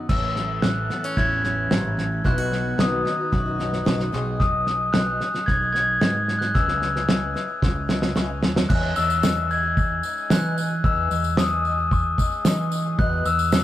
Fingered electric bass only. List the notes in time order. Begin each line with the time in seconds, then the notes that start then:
0.09 A1
0.63 A1
1.17 A1
1.71 A1
2.25 B1
2.79 B1
3.33 B1
3.87 B1
4.14 B1
4.95 B1
5.48 B1
6.02 G#2
6.55 C#2
7.10 C#2
7.62 C#2
8.17 C#2
8.43 D#2
8.70 E2
8.97 E2
10.30 E3
10.84 E2
11.11 E2
12.45 E3
12.99 E2
13.25 E2